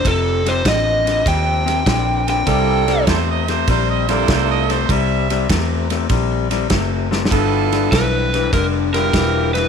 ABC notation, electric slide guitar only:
X:1
M:4/4
L:1/8
Q:"Swing" 1/4=99
K:Cmix
V:1 name="Electric slide guitar"
A c _e2 g3 g- | g2 z6 | z8 | z2 =B2 _B B2 =B |]